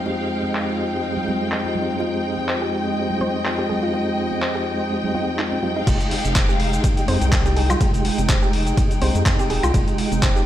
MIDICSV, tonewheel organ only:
0, 0, Header, 1, 2, 480
1, 0, Start_track
1, 0, Key_signature, -4, "minor"
1, 0, Tempo, 483871
1, 64, Time_signature, 4, 2, 24, 8
1, 10375, End_track
2, 0, Start_track
2, 0, Title_t, "Tonewheel organ"
2, 0, Program_c, 0, 16
2, 0, Note_on_c, 0, 41, 84
2, 0, Note_on_c, 0, 56, 78
2, 0, Note_on_c, 0, 60, 77
2, 0, Note_on_c, 0, 63, 76
2, 0, Note_on_c, 0, 67, 92
2, 5538, Note_off_c, 0, 41, 0
2, 5540, Note_off_c, 0, 56, 0
2, 5541, Note_off_c, 0, 60, 0
2, 5542, Note_off_c, 0, 63, 0
2, 5544, Note_off_c, 0, 67, 0
2, 5581, Note_on_c, 0, 41, 78
2, 5583, Note_on_c, 0, 56, 70
2, 5584, Note_on_c, 0, 60, 70
2, 5585, Note_on_c, 0, 63, 71
2, 5587, Note_on_c, 0, 67, 83
2, 5780, Note_off_c, 0, 41, 0
2, 5781, Note_off_c, 0, 56, 0
2, 5781, Note_off_c, 0, 60, 0
2, 5782, Note_off_c, 0, 63, 0
2, 5783, Note_off_c, 0, 67, 0
2, 5819, Note_on_c, 0, 56, 74
2, 5824, Note_on_c, 0, 63, 70
2, 5829, Note_on_c, 0, 67, 79
2, 6996, Note_off_c, 0, 56, 0
2, 6998, Note_off_c, 0, 63, 0
2, 7001, Note_off_c, 0, 67, 0
2, 7021, Note_on_c, 0, 56, 84
2, 7024, Note_on_c, 0, 63, 78
2, 7026, Note_on_c, 0, 67, 92
2, 7124, Note_off_c, 0, 56, 0
2, 7125, Note_off_c, 0, 63, 0
2, 7126, Note_off_c, 0, 67, 0
2, 7152, Note_on_c, 0, 56, 93
2, 7157, Note_on_c, 0, 63, 84
2, 7162, Note_on_c, 0, 67, 103
2, 7716, Note_off_c, 0, 56, 0
2, 7718, Note_off_c, 0, 63, 0
2, 7721, Note_off_c, 0, 67, 0
2, 7738, Note_on_c, 0, 56, 74
2, 7744, Note_on_c, 0, 63, 68
2, 7749, Note_on_c, 0, 67, 81
2, 8916, Note_off_c, 0, 56, 0
2, 8918, Note_off_c, 0, 63, 0
2, 8921, Note_off_c, 0, 67, 0
2, 8941, Note_on_c, 0, 56, 83
2, 8944, Note_on_c, 0, 63, 75
2, 8947, Note_on_c, 0, 67, 95
2, 9044, Note_off_c, 0, 56, 0
2, 9045, Note_off_c, 0, 63, 0
2, 9047, Note_off_c, 0, 67, 0
2, 9072, Note_on_c, 0, 56, 93
2, 9077, Note_on_c, 0, 63, 85
2, 9082, Note_on_c, 0, 67, 100
2, 9636, Note_off_c, 0, 56, 0
2, 9639, Note_off_c, 0, 63, 0
2, 9641, Note_off_c, 0, 67, 0
2, 9658, Note_on_c, 0, 56, 75
2, 9664, Note_on_c, 0, 63, 70
2, 9669, Note_on_c, 0, 67, 82
2, 10375, Note_off_c, 0, 56, 0
2, 10375, Note_off_c, 0, 63, 0
2, 10375, Note_off_c, 0, 67, 0
2, 10375, End_track
0, 0, End_of_file